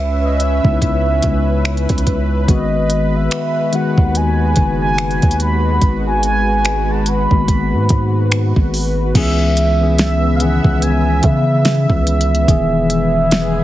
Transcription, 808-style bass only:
Already playing: C#2
0.64 C#2
1.24 C#2
1.90 C#2
2.48 G#1
3.98 D#2
4.57 F#1
5.23 D#2
5.82 G#1
7.31 G#1
7.73 G#2
7.90 G#2
8.56 G#1
9.15 C#2
10.64 C#2
11.24 C#3
11.90 C#2
12.48 E1

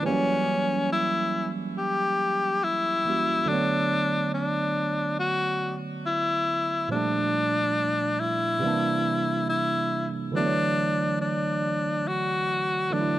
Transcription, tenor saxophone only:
0.06 C#4
0.92 E4
1.78 G4
2.63 E4
3.48 D4
4.34 D4
5.20 F#4
6.06 E4
6.91 D4
8.20 E4
9.49 E4
10.36 D4
11.21 D4
12.08 F#4
12.93 D4

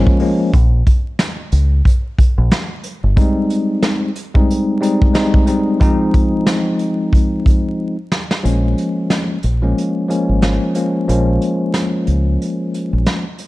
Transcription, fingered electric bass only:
0.54 A#1
1.52 C#2
2.38 A#1
3.04 G1
8.45 A#1
9.44 A#1
10.29 G#1
11.09 A#1
12.08 C#2
12.93 A#1

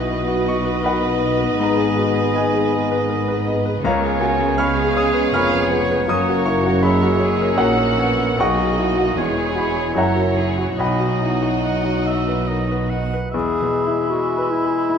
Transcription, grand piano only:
Already playing: B1 E4 F#4 F#5 B5 D#6
0.08 D#5
0.28 F#4
0.46 D#5 C#6
0.65 B4
0.83 A#4 D#5 F#5 B5
1.03 B4
1.23 D#5
1.40 B4
1.60 G#2 A#5
1.77 G#4
1.97 F#4
2.14 G#4
2.34 B4 D#5 G#5
2.53 G#4
2.72 D#5
2.91 B4
3.09 A#4
3.28 B4
3.47 D#5
3.65 B4
3.84 C#2 C#5 F5 A#5
4.03 G#4
4.21 F#4 G#5
4.41 G#4
4.58 C#5 B5 C#6 F6
4.78 G#4
4.95 C#5 D#6
5.14 B4
5.33 A#4 B5 C#6 F6
5.52 B4
5.71 C#5
5.91 B4
6.08 F#2 D#6
6.29 F#4
6.45 E4 C#6
6.66 F#4
6.83 C#5 B5
7.03 F#4
7.20 C#5
7.41 A#4
7.57 G#4 A#4 C#5 F#5
7.78 A#4
7.99 C#5
8.19 A#4
8.38 B1 F#5 C#6
8.58 F#4
8.79 E4
8.99 F#4
9.17 E2
9.37 G#4
9.55 F#4 B5
9.76 G#4
9.95 F#2 E5 F#5 A#5
10.16 F#4
10.38 E4
10.58 F#4
10.79 B1 D#5 F#5 B5
11.00 F#4
11.22 E4
11.42 F#4
11.63 D#5
11.84 F#4
12.06 D#5
12.28 B4
12.49 A#4
12.71 B4
12.93 D#5
13.13 B4
13.34 E2
13.62 B2
13.87 E4
14.13 G#4
14.38 B4
14.65 G#4
14.89 E4

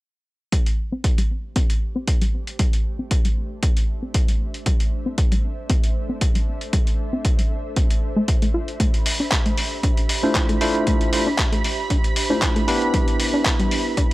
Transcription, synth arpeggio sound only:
0.52 G3
0.92 C4
1.18 G3
1.56 C4
1.96 C4
2.21 G3
2.59 G3
2.99 C4
3.25 G3
3.63 C4
4.03 C4
4.28 G3
4.66 G3
5.06 C4
5.32 G3
5.70 C4
6.09 C4
6.35 G3
6.73 G3
7.13 C4
7.39 G3
7.76 C4
8.16 A3
8.42 A3
8.54 F4
8.80 A3
9.20 D4
9.46 A3
9.83 D4
10.23 D4
10.49 A3
10.87 A3
11.27 D4
11.52 A3
11.90 D4
12.30 D4
12.56 A3
12.94 G3
13.34 D4
13.59 G3
13.97 D4

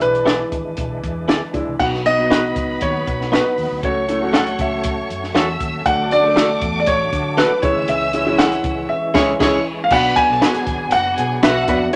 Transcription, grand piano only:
0.02 B4
1.79 F#5
2.06 D#5
2.82 C#5
3.34 B4
3.85 C#5
4.36 F#5
4.61 E5
5.86 F#5
6.12 D5
6.80 D5
6.87 C#5
7.38 B4
7.62 C#5
7.88 E5
8.38 F#5
8.89 E5
9.84 F5
9.92 F#5
10.16 G#5
10.92 F#5
11.43 E5

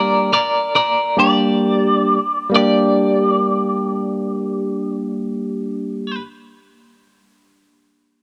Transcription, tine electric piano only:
Already playing: G3 A#3 D4 G4
1.17 G3 A#3 D4 G4
2.49 G3 A#3
2.54 D4 G4

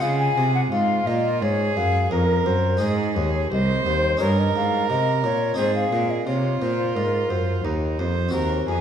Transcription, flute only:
0.02 F5
0.19 G#5
0.55 F#5
0.71 F5
1.07 D#5
1.42 C#5
1.77 F5
2.12 A#4
2.46 C5
3.17 C#5
3.52 D#5
3.87 C5
4.22 C#5
4.39 D#5
4.56 F5
4.90 D#5
5.24 C#5
5.57 C5
5.75 F5
6.10 D#5
6.27 C#5
6.62 C5
6.95 A#4
7.30 C5
8.68 G#5

